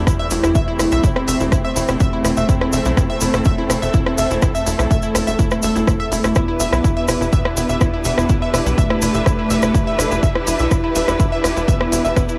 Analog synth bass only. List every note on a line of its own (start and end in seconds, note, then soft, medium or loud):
0.07 0.15 E1 loud
0.31 0.39 E1 loud
0.44 0.51 E1 medium
0.55 0.63 E1 loud
0.79 0.88 E1 loud
0.92 1.00 B1 medium
1.04 1.12 E1 loud
1.28 1.36 E1 medium
1.40 1.48 E1 medium
1.52 1.60 E1 loud
1.76 1.84 E1 medium
1.89 1.96 E1 medium
2.00 2.09 E1 loud
2.25 2.33 E1 loud
2.37 2.45 E1 medium
2.49 2.57 E1 loud
2.73 2.81 E1 loud
2.85 2.93 B1 medium
2.97 3.05 E1 loud
3.21 3.30 E1 medium
3.34 3.42 E1 medium
3.46 3.54 E1 loud
3.70 3.78 E1 loud
3.82 3.90 E1 medium
3.94 4.02 E1 loud
4.18 4.26 E1 medium
4.31 4.38 E1 medium
4.42 4.51 E1 loud
4.67 4.75 E1 loud
4.79 4.87 B1 medium
4.91 4.99 E1 loud
5.15 5.23 E1 loud
5.27 5.35 E1 medium
5.39 5.47 D1 loud
5.63 5.72 E1 medium
5.76 5.83 E1 medium
5.87 5.96 E1 loud
6.12 6.20 E1 loud
6.24 6.32 E1 medium
6.36 6.44 E1 loud
6.60 6.68 E1 loud
6.72 6.80 B1 medium
6.84 6.92 E1 loud
7.08 7.17 E1 medium
7.21 7.29 E1 medium
7.33 7.41 E1 loud
7.57 7.65 E1 loud
7.69 7.77 E1 medium
7.81 7.89 E1 loud
8.05 8.13 E1 medium
8.18 8.25 E1 medium
8.29 8.38 E1 loud
8.53 8.62 E1 loud
8.66 8.74 B1 medium
8.78 8.86 E1 loud
9.02 9.10 E1 loud
9.14 9.22 E1 medium
9.26 9.34 E1 loud
9.50 9.59 E1 loud
9.63 9.71 E1 medium
9.75 9.83 E1 loud
9.99 10.07 E1 loud
10.11 10.19 E1 medium
10.23 10.31 E1 loud
10.47 10.55 E1 medium
10.60 10.67 B1 medium
10.71 10.80 E1 loud
10.96 11.04 E1 medium
11.08 11.16 E1 medium
11.20 11.28 E1 loud
11.44 11.52 E1 medium
11.56 11.64 E1 medium
11.68 11.76 E1 loud
11.92 12.01 E1 loud
12.05 12.13 E1 medium
12.17 12.25 E1 loud